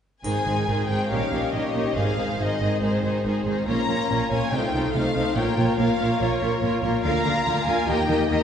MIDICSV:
0, 0, Header, 1, 8, 480
1, 0, Start_track
1, 0, Key_signature, -4, "major"
1, 0, Tempo, 427960
1, 276, Time_signature, 4, 2, 24, 8
1, 4593, Tempo, 420463
1, 9542, End_track
2, 0, Start_track
2, 0, Title_t, "Violin section"
2, 0, Program_c, 0, 48
2, 277, Note_on_c, 0, 80, 59
2, 959, Note_off_c, 0, 80, 0
2, 1008, Note_on_c, 0, 79, 56
2, 1247, Note_off_c, 0, 79, 0
2, 1250, Note_on_c, 0, 77, 57
2, 1718, Note_off_c, 0, 77, 0
2, 1725, Note_on_c, 0, 75, 53
2, 2204, Note_off_c, 0, 75, 0
2, 2206, Note_on_c, 0, 77, 56
2, 2685, Note_off_c, 0, 77, 0
2, 2691, Note_on_c, 0, 75, 62
2, 3165, Note_off_c, 0, 75, 0
2, 3167, Note_on_c, 0, 72, 51
2, 3865, Note_off_c, 0, 72, 0
2, 4113, Note_on_c, 0, 82, 62
2, 4787, Note_off_c, 0, 82, 0
2, 4834, Note_on_c, 0, 80, 62
2, 5076, Note_off_c, 0, 80, 0
2, 5079, Note_on_c, 0, 79, 59
2, 5559, Note_off_c, 0, 79, 0
2, 5561, Note_on_c, 0, 77, 59
2, 6029, Note_off_c, 0, 77, 0
2, 6030, Note_on_c, 0, 79, 57
2, 6513, Note_off_c, 0, 79, 0
2, 6513, Note_on_c, 0, 77, 62
2, 6985, Note_off_c, 0, 77, 0
2, 6992, Note_on_c, 0, 73, 57
2, 7712, Note_off_c, 0, 73, 0
2, 7959, Note_on_c, 0, 82, 66
2, 8629, Note_off_c, 0, 82, 0
2, 8669, Note_on_c, 0, 80, 65
2, 8909, Note_off_c, 0, 80, 0
2, 8919, Note_on_c, 0, 79, 69
2, 9391, Note_on_c, 0, 75, 66
2, 9394, Note_off_c, 0, 79, 0
2, 9542, Note_off_c, 0, 75, 0
2, 9542, End_track
3, 0, Start_track
3, 0, Title_t, "Violin section"
3, 0, Program_c, 1, 48
3, 274, Note_on_c, 1, 68, 41
3, 277, Note_on_c, 1, 72, 40
3, 501, Note_off_c, 1, 68, 0
3, 504, Note_off_c, 1, 72, 0
3, 514, Note_on_c, 1, 68, 31
3, 518, Note_on_c, 1, 72, 35
3, 739, Note_off_c, 1, 68, 0
3, 741, Note_off_c, 1, 72, 0
3, 753, Note_on_c, 1, 68, 36
3, 755, Note_on_c, 1, 72, 33
3, 980, Note_off_c, 1, 68, 0
3, 984, Note_off_c, 1, 72, 0
3, 993, Note_on_c, 1, 68, 36
3, 998, Note_on_c, 1, 72, 38
3, 1235, Note_off_c, 1, 68, 0
3, 1237, Note_off_c, 1, 72, 0
3, 1237, Note_on_c, 1, 73, 39
3, 1238, Note_on_c, 1, 67, 38
3, 1466, Note_off_c, 1, 67, 0
3, 1467, Note_off_c, 1, 73, 0
3, 1479, Note_on_c, 1, 67, 30
3, 1480, Note_on_c, 1, 73, 31
3, 1703, Note_off_c, 1, 67, 0
3, 1708, Note_off_c, 1, 73, 0
3, 1717, Note_on_c, 1, 67, 33
3, 1722, Note_on_c, 1, 73, 36
3, 1942, Note_off_c, 1, 67, 0
3, 1943, Note_off_c, 1, 73, 0
3, 1955, Note_on_c, 1, 67, 39
3, 1957, Note_on_c, 1, 73, 37
3, 2192, Note_on_c, 1, 72, 41
3, 2193, Note_on_c, 1, 68, 46
3, 2195, Note_off_c, 1, 67, 0
3, 2195, Note_off_c, 1, 73, 0
3, 2423, Note_off_c, 1, 72, 0
3, 2424, Note_off_c, 1, 68, 0
3, 2436, Note_on_c, 1, 72, 35
3, 2438, Note_on_c, 1, 68, 37
3, 2667, Note_off_c, 1, 68, 0
3, 2672, Note_off_c, 1, 72, 0
3, 2681, Note_on_c, 1, 68, 33
3, 2686, Note_on_c, 1, 72, 38
3, 2914, Note_off_c, 1, 68, 0
3, 2914, Note_off_c, 1, 72, 0
3, 2927, Note_on_c, 1, 68, 37
3, 2927, Note_on_c, 1, 72, 39
3, 3151, Note_off_c, 1, 68, 0
3, 3151, Note_off_c, 1, 72, 0
3, 3164, Note_on_c, 1, 68, 39
3, 3165, Note_on_c, 1, 72, 43
3, 3392, Note_off_c, 1, 72, 0
3, 3393, Note_off_c, 1, 68, 0
3, 3405, Note_on_c, 1, 72, 31
3, 3406, Note_on_c, 1, 68, 32
3, 3626, Note_off_c, 1, 68, 0
3, 3626, Note_off_c, 1, 72, 0
3, 3639, Note_on_c, 1, 68, 37
3, 3639, Note_on_c, 1, 72, 33
3, 3864, Note_off_c, 1, 68, 0
3, 3866, Note_off_c, 1, 72, 0
3, 3878, Note_on_c, 1, 68, 37
3, 3880, Note_on_c, 1, 72, 35
3, 4110, Note_off_c, 1, 68, 0
3, 4111, Note_off_c, 1, 72, 0
3, 4112, Note_on_c, 1, 65, 44
3, 4113, Note_on_c, 1, 73, 46
3, 4339, Note_off_c, 1, 65, 0
3, 4339, Note_off_c, 1, 73, 0
3, 4352, Note_on_c, 1, 73, 39
3, 4353, Note_on_c, 1, 65, 36
3, 4584, Note_off_c, 1, 65, 0
3, 4586, Note_off_c, 1, 73, 0
3, 4598, Note_on_c, 1, 65, 39
3, 4599, Note_on_c, 1, 73, 40
3, 4828, Note_off_c, 1, 73, 0
3, 4829, Note_off_c, 1, 65, 0
3, 4842, Note_on_c, 1, 73, 38
3, 4843, Note_on_c, 1, 65, 36
3, 5073, Note_off_c, 1, 65, 0
3, 5075, Note_off_c, 1, 73, 0
3, 5081, Note_on_c, 1, 72, 40
3, 5086, Note_on_c, 1, 65, 39
3, 5311, Note_off_c, 1, 72, 0
3, 5317, Note_off_c, 1, 65, 0
3, 5325, Note_on_c, 1, 72, 33
3, 5329, Note_on_c, 1, 65, 32
3, 5539, Note_off_c, 1, 72, 0
3, 5544, Note_off_c, 1, 65, 0
3, 5553, Note_on_c, 1, 72, 35
3, 5557, Note_on_c, 1, 65, 37
3, 5784, Note_off_c, 1, 72, 0
3, 5787, Note_off_c, 1, 65, 0
3, 5798, Note_on_c, 1, 72, 43
3, 5800, Note_on_c, 1, 65, 37
3, 6032, Note_off_c, 1, 72, 0
3, 6033, Note_off_c, 1, 65, 0
3, 6033, Note_on_c, 1, 73, 50
3, 6036, Note_on_c, 1, 70, 50
3, 6264, Note_off_c, 1, 73, 0
3, 6267, Note_off_c, 1, 70, 0
3, 6278, Note_on_c, 1, 73, 40
3, 6281, Note_on_c, 1, 70, 38
3, 6496, Note_off_c, 1, 73, 0
3, 6499, Note_off_c, 1, 70, 0
3, 6510, Note_on_c, 1, 73, 37
3, 6513, Note_on_c, 1, 70, 43
3, 6730, Note_off_c, 1, 70, 0
3, 6730, Note_off_c, 1, 73, 0
3, 6744, Note_on_c, 1, 70, 42
3, 6744, Note_on_c, 1, 73, 44
3, 6965, Note_off_c, 1, 70, 0
3, 6967, Note_off_c, 1, 73, 0
3, 6978, Note_on_c, 1, 70, 48
3, 6981, Note_on_c, 1, 73, 44
3, 7207, Note_off_c, 1, 70, 0
3, 7209, Note_off_c, 1, 73, 0
3, 7221, Note_on_c, 1, 70, 36
3, 7223, Note_on_c, 1, 73, 38
3, 7453, Note_off_c, 1, 70, 0
3, 7459, Note_off_c, 1, 73, 0
3, 7467, Note_on_c, 1, 70, 41
3, 7473, Note_on_c, 1, 73, 42
3, 7688, Note_off_c, 1, 70, 0
3, 7688, Note_off_c, 1, 73, 0
3, 7701, Note_on_c, 1, 73, 43
3, 7702, Note_on_c, 1, 70, 46
3, 7933, Note_off_c, 1, 70, 0
3, 7942, Note_off_c, 1, 73, 0
3, 7943, Note_on_c, 1, 77, 53
3, 7947, Note_on_c, 1, 70, 57
3, 8173, Note_off_c, 1, 70, 0
3, 8175, Note_off_c, 1, 77, 0
3, 8187, Note_on_c, 1, 70, 43
3, 8189, Note_on_c, 1, 77, 44
3, 8401, Note_off_c, 1, 77, 0
3, 8403, Note_off_c, 1, 70, 0
3, 8415, Note_on_c, 1, 77, 43
3, 8417, Note_on_c, 1, 70, 49
3, 8642, Note_off_c, 1, 70, 0
3, 8644, Note_off_c, 1, 77, 0
3, 8656, Note_on_c, 1, 70, 47
3, 8657, Note_on_c, 1, 77, 49
3, 8890, Note_off_c, 1, 70, 0
3, 8898, Note_off_c, 1, 77, 0
3, 8901, Note_on_c, 1, 75, 49
3, 8904, Note_on_c, 1, 70, 49
3, 9129, Note_off_c, 1, 70, 0
3, 9131, Note_off_c, 1, 75, 0
3, 9143, Note_on_c, 1, 70, 36
3, 9144, Note_on_c, 1, 75, 42
3, 9374, Note_off_c, 1, 75, 0
3, 9377, Note_off_c, 1, 70, 0
3, 9388, Note_on_c, 1, 75, 44
3, 9390, Note_on_c, 1, 70, 47
3, 9542, Note_off_c, 1, 70, 0
3, 9542, Note_off_c, 1, 75, 0
3, 9542, End_track
4, 0, Start_track
4, 0, Title_t, "French horn section"
4, 0, Program_c, 2, 60
4, 279, Note_on_c, 2, 56, 38
4, 279, Note_on_c, 2, 60, 39
4, 1202, Note_off_c, 2, 56, 0
4, 1202, Note_off_c, 2, 60, 0
4, 1250, Note_on_c, 2, 55, 40
4, 1251, Note_on_c, 2, 61, 42
4, 2207, Note_off_c, 2, 55, 0
4, 2207, Note_off_c, 2, 61, 0
4, 2211, Note_on_c, 2, 60, 40
4, 2212, Note_on_c, 2, 56, 40
4, 4079, Note_off_c, 2, 60, 0
4, 4080, Note_off_c, 2, 56, 0
4, 4120, Note_on_c, 2, 58, 38
4, 4121, Note_on_c, 2, 61, 42
4, 5075, Note_on_c, 2, 57, 43
4, 5078, Note_off_c, 2, 58, 0
4, 5079, Note_off_c, 2, 61, 0
4, 5079, Note_on_c, 2, 63, 46
4, 6037, Note_off_c, 2, 57, 0
4, 6038, Note_on_c, 2, 58, 45
4, 6039, Note_off_c, 2, 63, 0
4, 6043, Note_on_c, 2, 65, 45
4, 8867, Note_off_c, 2, 65, 0
4, 8904, Note_on_c, 2, 63, 55
4, 9542, Note_off_c, 2, 58, 0
4, 9542, Note_off_c, 2, 63, 0
4, 9542, End_track
5, 0, Start_track
5, 0, Title_t, "Viola section"
5, 0, Program_c, 3, 48
5, 275, Note_on_c, 3, 51, 34
5, 277, Note_on_c, 3, 63, 39
5, 503, Note_off_c, 3, 63, 0
5, 505, Note_off_c, 3, 51, 0
5, 516, Note_on_c, 3, 63, 31
5, 518, Note_on_c, 3, 51, 35
5, 746, Note_off_c, 3, 63, 0
5, 750, Note_off_c, 3, 51, 0
5, 760, Note_on_c, 3, 63, 34
5, 763, Note_on_c, 3, 51, 32
5, 985, Note_off_c, 3, 51, 0
5, 988, Note_off_c, 3, 63, 0
5, 999, Note_on_c, 3, 51, 32
5, 1001, Note_on_c, 3, 63, 35
5, 1224, Note_off_c, 3, 51, 0
5, 1226, Note_off_c, 3, 63, 0
5, 1238, Note_on_c, 3, 51, 37
5, 1240, Note_on_c, 3, 63, 34
5, 1470, Note_off_c, 3, 63, 0
5, 1474, Note_off_c, 3, 51, 0
5, 1483, Note_on_c, 3, 63, 37
5, 1487, Note_on_c, 3, 51, 35
5, 1719, Note_off_c, 3, 63, 0
5, 1721, Note_off_c, 3, 51, 0
5, 1732, Note_on_c, 3, 63, 40
5, 1734, Note_on_c, 3, 51, 40
5, 1956, Note_off_c, 3, 51, 0
5, 1956, Note_off_c, 3, 63, 0
5, 1969, Note_on_c, 3, 63, 36
5, 1970, Note_on_c, 3, 51, 32
5, 2197, Note_off_c, 3, 51, 0
5, 2197, Note_off_c, 3, 63, 0
5, 2210, Note_on_c, 3, 51, 36
5, 2210, Note_on_c, 3, 63, 35
5, 2430, Note_off_c, 3, 63, 0
5, 2432, Note_off_c, 3, 51, 0
5, 2443, Note_on_c, 3, 63, 30
5, 2446, Note_on_c, 3, 51, 33
5, 2674, Note_off_c, 3, 51, 0
5, 2674, Note_off_c, 3, 63, 0
5, 2688, Note_on_c, 3, 51, 33
5, 2688, Note_on_c, 3, 63, 36
5, 2915, Note_off_c, 3, 63, 0
5, 2917, Note_off_c, 3, 51, 0
5, 2929, Note_on_c, 3, 63, 36
5, 2930, Note_on_c, 3, 51, 35
5, 3152, Note_off_c, 3, 51, 0
5, 3155, Note_off_c, 3, 63, 0
5, 3166, Note_on_c, 3, 51, 36
5, 3169, Note_on_c, 3, 63, 39
5, 3398, Note_off_c, 3, 51, 0
5, 3399, Note_off_c, 3, 63, 0
5, 3413, Note_on_c, 3, 51, 34
5, 3413, Note_on_c, 3, 63, 35
5, 3640, Note_off_c, 3, 51, 0
5, 3640, Note_off_c, 3, 63, 0
5, 3652, Note_on_c, 3, 51, 36
5, 3652, Note_on_c, 3, 63, 38
5, 3871, Note_off_c, 3, 51, 0
5, 3874, Note_off_c, 3, 63, 0
5, 3885, Note_on_c, 3, 51, 35
5, 3887, Note_on_c, 3, 63, 32
5, 4114, Note_off_c, 3, 51, 0
5, 4115, Note_off_c, 3, 63, 0
5, 4120, Note_on_c, 3, 58, 39
5, 4121, Note_on_c, 3, 61, 42
5, 4337, Note_off_c, 3, 61, 0
5, 4339, Note_off_c, 3, 58, 0
5, 4350, Note_on_c, 3, 61, 37
5, 4352, Note_on_c, 3, 58, 34
5, 4573, Note_off_c, 3, 58, 0
5, 4575, Note_off_c, 3, 61, 0
5, 4587, Note_on_c, 3, 58, 38
5, 4589, Note_on_c, 3, 61, 38
5, 4815, Note_off_c, 3, 61, 0
5, 4818, Note_off_c, 3, 58, 0
5, 4828, Note_on_c, 3, 61, 38
5, 4831, Note_on_c, 3, 58, 38
5, 5068, Note_off_c, 3, 61, 0
5, 5070, Note_off_c, 3, 58, 0
5, 5078, Note_on_c, 3, 63, 39
5, 5079, Note_on_c, 3, 57, 40
5, 5308, Note_off_c, 3, 63, 0
5, 5310, Note_off_c, 3, 57, 0
5, 5322, Note_on_c, 3, 63, 36
5, 5323, Note_on_c, 3, 57, 41
5, 5549, Note_off_c, 3, 57, 0
5, 5555, Note_off_c, 3, 63, 0
5, 5563, Note_on_c, 3, 57, 44
5, 5567, Note_on_c, 3, 63, 42
5, 5796, Note_off_c, 3, 57, 0
5, 5798, Note_off_c, 3, 63, 0
5, 5812, Note_on_c, 3, 63, 39
5, 5813, Note_on_c, 3, 57, 39
5, 6040, Note_off_c, 3, 57, 0
5, 6040, Note_off_c, 3, 63, 0
5, 6044, Note_on_c, 3, 65, 42
5, 6046, Note_on_c, 3, 58, 43
5, 6267, Note_off_c, 3, 58, 0
5, 6267, Note_off_c, 3, 65, 0
5, 6281, Note_on_c, 3, 58, 35
5, 6281, Note_on_c, 3, 65, 37
5, 6508, Note_off_c, 3, 58, 0
5, 6510, Note_off_c, 3, 65, 0
5, 6522, Note_on_c, 3, 58, 39
5, 6524, Note_on_c, 3, 65, 41
5, 6750, Note_off_c, 3, 58, 0
5, 6750, Note_off_c, 3, 65, 0
5, 6763, Note_on_c, 3, 58, 42
5, 6764, Note_on_c, 3, 65, 43
5, 6988, Note_off_c, 3, 58, 0
5, 6988, Note_off_c, 3, 65, 0
5, 7001, Note_on_c, 3, 65, 44
5, 7002, Note_on_c, 3, 58, 46
5, 7227, Note_off_c, 3, 65, 0
5, 7230, Note_off_c, 3, 58, 0
5, 7240, Note_on_c, 3, 65, 41
5, 7243, Note_on_c, 3, 58, 40
5, 7465, Note_off_c, 3, 65, 0
5, 7466, Note_off_c, 3, 58, 0
5, 7479, Note_on_c, 3, 58, 46
5, 7479, Note_on_c, 3, 65, 45
5, 7702, Note_off_c, 3, 58, 0
5, 7704, Note_off_c, 3, 65, 0
5, 7716, Note_on_c, 3, 58, 39
5, 7718, Note_on_c, 3, 65, 45
5, 7937, Note_off_c, 3, 58, 0
5, 7937, Note_off_c, 3, 65, 0
5, 7951, Note_on_c, 3, 58, 43
5, 7951, Note_on_c, 3, 65, 44
5, 8184, Note_off_c, 3, 58, 0
5, 8184, Note_off_c, 3, 65, 0
5, 8198, Note_on_c, 3, 58, 42
5, 8198, Note_on_c, 3, 65, 46
5, 8418, Note_off_c, 3, 58, 0
5, 8418, Note_off_c, 3, 65, 0
5, 8432, Note_on_c, 3, 58, 40
5, 8432, Note_on_c, 3, 65, 46
5, 8658, Note_off_c, 3, 58, 0
5, 8659, Note_off_c, 3, 65, 0
5, 8672, Note_on_c, 3, 58, 45
5, 8672, Note_on_c, 3, 65, 42
5, 8898, Note_off_c, 3, 58, 0
5, 8905, Note_off_c, 3, 65, 0
5, 8912, Note_on_c, 3, 58, 46
5, 8914, Note_on_c, 3, 67, 49
5, 9133, Note_off_c, 3, 67, 0
5, 9135, Note_off_c, 3, 58, 0
5, 9147, Note_on_c, 3, 67, 43
5, 9149, Note_on_c, 3, 58, 42
5, 9371, Note_off_c, 3, 58, 0
5, 9371, Note_off_c, 3, 67, 0
5, 9385, Note_on_c, 3, 58, 45
5, 9385, Note_on_c, 3, 67, 45
5, 9542, Note_off_c, 3, 58, 0
5, 9542, Note_off_c, 3, 67, 0
5, 9542, End_track
6, 0, Start_track
6, 0, Title_t, "Cello section"
6, 0, Program_c, 4, 48
6, 277, Note_on_c, 4, 44, 40
6, 367, Note_off_c, 4, 44, 0
6, 516, Note_on_c, 4, 44, 38
6, 606, Note_off_c, 4, 44, 0
6, 760, Note_on_c, 4, 44, 42
6, 850, Note_off_c, 4, 44, 0
6, 1003, Note_on_c, 4, 44, 40
6, 1093, Note_off_c, 4, 44, 0
6, 1244, Note_on_c, 4, 46, 44
6, 1334, Note_off_c, 4, 46, 0
6, 1487, Note_on_c, 4, 46, 38
6, 1577, Note_off_c, 4, 46, 0
6, 1726, Note_on_c, 4, 46, 41
6, 1816, Note_off_c, 4, 46, 0
6, 1964, Note_on_c, 4, 46, 38
6, 2054, Note_off_c, 4, 46, 0
6, 2207, Note_on_c, 4, 44, 42
6, 2296, Note_off_c, 4, 44, 0
6, 2450, Note_on_c, 4, 44, 39
6, 2540, Note_off_c, 4, 44, 0
6, 2688, Note_on_c, 4, 44, 40
6, 2778, Note_off_c, 4, 44, 0
6, 2924, Note_on_c, 4, 44, 37
6, 3014, Note_off_c, 4, 44, 0
6, 3163, Note_on_c, 4, 44, 43
6, 3253, Note_off_c, 4, 44, 0
6, 3399, Note_on_c, 4, 44, 45
6, 3489, Note_off_c, 4, 44, 0
6, 3638, Note_on_c, 4, 44, 45
6, 3728, Note_off_c, 4, 44, 0
6, 3880, Note_on_c, 4, 44, 43
6, 3970, Note_off_c, 4, 44, 0
6, 4125, Note_on_c, 4, 46, 38
6, 4215, Note_off_c, 4, 46, 0
6, 4360, Note_on_c, 4, 46, 41
6, 4449, Note_off_c, 4, 46, 0
6, 4601, Note_on_c, 4, 46, 44
6, 4693, Note_off_c, 4, 46, 0
6, 4838, Note_on_c, 4, 46, 38
6, 4930, Note_off_c, 4, 46, 0
6, 5080, Note_on_c, 4, 48, 44
6, 5172, Note_off_c, 4, 48, 0
6, 5318, Note_on_c, 4, 48, 42
6, 5409, Note_off_c, 4, 48, 0
6, 5556, Note_on_c, 4, 48, 46
6, 5648, Note_off_c, 4, 48, 0
6, 5796, Note_on_c, 4, 48, 43
6, 5888, Note_off_c, 4, 48, 0
6, 6034, Note_on_c, 4, 46, 50
6, 6125, Note_off_c, 4, 46, 0
6, 6275, Note_on_c, 4, 46, 47
6, 6366, Note_off_c, 4, 46, 0
6, 6518, Note_on_c, 4, 46, 45
6, 6609, Note_off_c, 4, 46, 0
6, 6755, Note_on_c, 4, 46, 46
6, 6846, Note_off_c, 4, 46, 0
6, 6998, Note_on_c, 4, 46, 43
6, 7090, Note_off_c, 4, 46, 0
6, 7241, Note_on_c, 4, 46, 46
6, 7332, Note_off_c, 4, 46, 0
6, 7476, Note_on_c, 4, 46, 50
6, 7568, Note_off_c, 4, 46, 0
6, 7714, Note_on_c, 4, 46, 52
6, 7806, Note_off_c, 4, 46, 0
6, 7952, Note_on_c, 4, 50, 53
6, 8044, Note_off_c, 4, 50, 0
6, 8197, Note_on_c, 4, 50, 50
6, 8288, Note_off_c, 4, 50, 0
6, 8433, Note_on_c, 4, 50, 47
6, 8524, Note_off_c, 4, 50, 0
6, 8671, Note_on_c, 4, 50, 46
6, 8763, Note_off_c, 4, 50, 0
6, 8916, Note_on_c, 4, 51, 48
6, 9007, Note_off_c, 4, 51, 0
6, 9153, Note_on_c, 4, 51, 51
6, 9245, Note_off_c, 4, 51, 0
6, 9399, Note_on_c, 4, 51, 53
6, 9490, Note_off_c, 4, 51, 0
6, 9542, End_track
7, 0, Start_track
7, 0, Title_t, "Double bass section"
7, 0, Program_c, 5, 48
7, 280, Note_on_c, 5, 32, 42
7, 370, Note_off_c, 5, 32, 0
7, 521, Note_on_c, 5, 32, 37
7, 610, Note_off_c, 5, 32, 0
7, 761, Note_on_c, 5, 32, 39
7, 851, Note_off_c, 5, 32, 0
7, 1003, Note_on_c, 5, 32, 39
7, 1093, Note_off_c, 5, 32, 0
7, 1245, Note_on_c, 5, 34, 44
7, 1335, Note_off_c, 5, 34, 0
7, 1484, Note_on_c, 5, 34, 41
7, 1574, Note_off_c, 5, 34, 0
7, 1725, Note_on_c, 5, 34, 36
7, 1814, Note_off_c, 5, 34, 0
7, 1967, Note_on_c, 5, 34, 38
7, 2057, Note_off_c, 5, 34, 0
7, 2203, Note_on_c, 5, 32, 46
7, 2293, Note_off_c, 5, 32, 0
7, 2442, Note_on_c, 5, 32, 38
7, 2532, Note_off_c, 5, 32, 0
7, 2686, Note_on_c, 5, 32, 45
7, 2775, Note_off_c, 5, 32, 0
7, 2923, Note_on_c, 5, 32, 38
7, 3013, Note_off_c, 5, 32, 0
7, 3163, Note_on_c, 5, 32, 42
7, 3253, Note_off_c, 5, 32, 0
7, 3403, Note_on_c, 5, 32, 42
7, 3492, Note_off_c, 5, 32, 0
7, 3643, Note_on_c, 5, 32, 37
7, 3732, Note_off_c, 5, 32, 0
7, 3881, Note_on_c, 5, 32, 39
7, 3971, Note_off_c, 5, 32, 0
7, 4116, Note_on_c, 5, 34, 48
7, 4206, Note_off_c, 5, 34, 0
7, 4360, Note_on_c, 5, 34, 41
7, 4449, Note_off_c, 5, 34, 0
7, 4597, Note_on_c, 5, 34, 45
7, 4689, Note_off_c, 5, 34, 0
7, 4840, Note_on_c, 5, 34, 40
7, 4931, Note_off_c, 5, 34, 0
7, 5085, Note_on_c, 5, 36, 46
7, 5176, Note_off_c, 5, 36, 0
7, 5325, Note_on_c, 5, 36, 46
7, 5416, Note_off_c, 5, 36, 0
7, 5567, Note_on_c, 5, 36, 46
7, 5658, Note_off_c, 5, 36, 0
7, 5807, Note_on_c, 5, 36, 43
7, 5899, Note_off_c, 5, 36, 0
7, 6042, Note_on_c, 5, 34, 53
7, 6134, Note_off_c, 5, 34, 0
7, 6286, Note_on_c, 5, 34, 42
7, 6377, Note_off_c, 5, 34, 0
7, 6523, Note_on_c, 5, 34, 48
7, 6614, Note_off_c, 5, 34, 0
7, 6759, Note_on_c, 5, 34, 43
7, 6850, Note_off_c, 5, 34, 0
7, 7002, Note_on_c, 5, 34, 51
7, 7093, Note_off_c, 5, 34, 0
7, 7239, Note_on_c, 5, 34, 50
7, 7331, Note_off_c, 5, 34, 0
7, 7477, Note_on_c, 5, 34, 43
7, 7568, Note_off_c, 5, 34, 0
7, 7715, Note_on_c, 5, 34, 46
7, 7806, Note_off_c, 5, 34, 0
7, 7949, Note_on_c, 5, 38, 57
7, 8040, Note_off_c, 5, 38, 0
7, 8194, Note_on_c, 5, 38, 52
7, 8286, Note_off_c, 5, 38, 0
7, 8432, Note_on_c, 5, 38, 53
7, 8523, Note_off_c, 5, 38, 0
7, 8676, Note_on_c, 5, 38, 48
7, 8767, Note_off_c, 5, 38, 0
7, 8908, Note_on_c, 5, 39, 58
7, 9000, Note_off_c, 5, 39, 0
7, 9145, Note_on_c, 5, 39, 51
7, 9236, Note_off_c, 5, 39, 0
7, 9391, Note_on_c, 5, 39, 50
7, 9482, Note_off_c, 5, 39, 0
7, 9542, End_track
8, 0, Start_track
8, 0, Title_t, "Drums"
8, 274, Note_on_c, 9, 81, 30
8, 386, Note_off_c, 9, 81, 0
8, 9542, End_track
0, 0, End_of_file